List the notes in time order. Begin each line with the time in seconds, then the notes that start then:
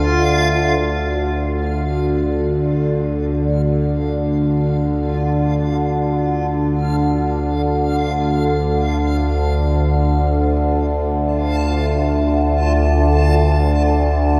Already playing: D2 D3 D4 F4 A4 D5 F5
0.80 D2 D3 F4 F5
11.03 A5